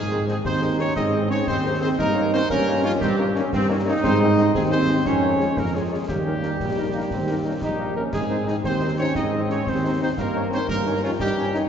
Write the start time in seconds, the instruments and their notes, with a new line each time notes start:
Already playing: tuba G#2, euphonium G#3, trumpet section G#4
0.10 french horn section D#3 C4 G#4, woodwind section D#4 C5
0.27 french horn section D#3 C4 G#4, euphonium G#3, woodwind section D#4 C5, trumpet section G#4, snare
0.44 tuba D#2, euphonium C4, trombone section D#4, trumpet section C5, concert bass drum, snare
0.61 french horn section D#3 C4 G#4, woodwind section D#4 C5
0.78 french horn section D#3 C4 G#4, euphonium C#4, woodwind section D#4 C5, trumpet section C#5
0.95 tuba G#2, trombone section C4, euphonium D#4, trumpet section D#5, concert bass drum, snare
1.13 french horn section D#3 C4 G#4, woodwind section D#4 C5
1.29 french horn section D#3 C4 G#4, euphonium C#4, woodwind section D#4 C5, trumpet section C#5, snare
1.47 tuba D#2, euphonium C4, trombone section C4, trumpet section C5, concert bass drum, snare
1.65 french horn section D#3 C4 G#4, woodwind section D#4 C5
1.81 french horn section D#3 C4 G#4, euphonium C4, woodwind section D#4 C5, trumpet section C5
1.99 tuba G2, euphonium A#3, trombone section D#4, trumpet section A#4, concert bass drum, snare, crash
2.15 french horn section D#3 A#3 C#4, woodwind section D#4 C#5
2.31 french horn section D#3 A#3 C#4, euphonium C4, woodwind section D#4 C#5, trumpet section C5, snare
2.49 tuba G2, euphonium A#3, trombone section C#4, trumpet section A#4, concert bass drum, snare
2.66 french horn section D#3 A#3 C#4, woodwind section D#4 C#5
2.83 french horn section D#3 A#3 C#4, euphonium F3, woodwind section D#4 C#5, trumpet section F4
3.01 tuba G2, euphonium G3, trombone section C4, trumpet section G4, concert bass drum, snare
3.17 french horn section D#3 A#3 C#4, trombone section A#3, woodwind section D#4 C#5
3.34 french horn section D#3 A#3 C#4, trombone section C#4, woodwind section D#4 C#5, snare
3.53 tuba G2, trombone section C4, concert bass drum, snare
3.68 french horn section D#3 A#3 C#4, trombone section A#3, woodwind section D#4 C#5
3.85 french horn section D#3 A#3 C#4, woodwind section D#4 C#5, trombone section D#4
4.04 tuba G#2, euphonium C4, trumpet section C5, concert bass drum, snare, crash
4.20 french horn section D#3 G#3 C4, woodwind section D#4 C5, euphonium D#4, trumpet section D#5
4.36 french horn section D#3 G#3 C4, woodwind section D#4 C5, snare
4.54 tuba D#2, euphonium G#3, trombone section C4, trumpet section G#4, concert bass drum, snare
4.71 french horn section D#3 G#3 C4, euphonium C4, woodwind section D#4 C5, trumpet section C5
4.88 french horn section D#3 G#3 C4, woodwind section D#4 C5
5.05 tuba F2, euphonium C#4, trombone section C#4, trumpet section C#5, concert bass drum, snare
5.23 french horn section G#3 C#4, trombone section A#3, woodwind section F4 C#5
5.40 french horn section G#3 C#4, trombone section G#3, woodwind section F4 C#5, snare
5.56 tuba F2, euphonium A#3, trumpet section A#4, concert bass drum, snare
5.74 euphonium G#3, french horn section G#3 C#4, woodwind section F4 C#5, trumpet section G#4
5.90 french horn section G#3 C#4, woodwind section F4 C#5
6.08 tuba D#2, euphonium G3, trombone section A#3, trumpet section G4, concert bass drum, snare, crash
6.25 french horn section D#3 A#3 D#4, woodwind section D#4 A#4
6.42 french horn section D#3 A#3 D#4, woodwind section D#4 A#4, snare
6.60 tuba A#1, trombone section A#3, concert bass drum, snare
6.77 french horn section D#3 A#3 D#4, woodwind section D#4 A#4
6.93 french horn section D#3 A#3 D#4, trombone section A#3, woodwind section D#4 A#4
7.11 tuba D#2, trombone section C4, concert bass drum, snare
7.28 french horn section D#3 A#3 D#4, woodwind section D#4 A#4
7.44 french horn section D#3 A#3 D#4, trombone section C#4, woodwind section D#4 A#4
7.62 tuba A#1, euphonium G3, trombone section D#4, trumpet section G4, concert bass drum, snare
7.78 french horn section D#3 A#3 D#4, woodwind section D#4 A#4
7.96 french horn section D#3 A#3 D#4, euphonium A#3, trombone section C#4, woodwind section D#4 A#4, trumpet section A#4
8.13 tuba G#2, euphonium G#3, trombone section C4, trumpet section G#4, concert bass drum, snare, crash
8.30 french horn section D#3 C4 D#4, woodwind section D#4 C5
8.46 french horn section D#3 C4 D#4, euphonium G#3, woodwind section D#4 C5, trumpet section G#4, snare
8.63 tuba D#2, euphonium C4, trumpet section C5, concert bass drum, snare
8.81 french horn section D#3 C4 D#4, woodwind section D#4 C5
8.98 french horn section D#3 C4 D#4, euphonium C#4, woodwind section D#4 C5, trumpet section C#5
9.15 tuba G#2, euphonium D#4, trumpet section D#5, concert bass drum, snare
9.32 french horn section D#3 C4 D#4, woodwind section D#4 C5
9.49 french horn section D#3 C4 D#4, euphonium C#4, woodwind section D#4 C5, trumpet section C#5, snare
9.66 tuba D#2, euphonium C4, trumpet section C5, concert bass drum, snare
9.83 french horn section D#3 C4 D#4, woodwind section D#4 C5
10.00 french horn section D#3 C4 D#4, euphonium C4, woodwind section D#4 C5, trumpet section C5
10.17 tuba G2, trombone section A#3, euphonium A#3, trumpet section A#4, concert bass drum, snare, crash
10.35 french horn section D#3 C#4 D#4, woodwind section D#4 C#5
10.50 french horn section D#3 C#4 D#4, euphonium C4, woodwind section D#4 C#5, trumpet section C5, snare
10.68 tuba G2, euphonium A#3, trumpet section A#4, concert bass drum, snare
10.85 french horn section D#3 C#4 D#4, woodwind section D#4 C#5
11.03 french horn section D#3 C#4 D#4, euphonium F3, woodwind section D#4 C#5, trumpet section F4
11.20 tuba G2, euphonium G3, trombone section D#4, trumpet section G4, concert bass drum, snare
11.37 french horn section D#3 C#4 D#4, trombone section C#4, woodwind section D#4 C#5
11.53 french horn section D#3 C#4 D#4, woodwind section D#4 C#5, trombone section D#4, snare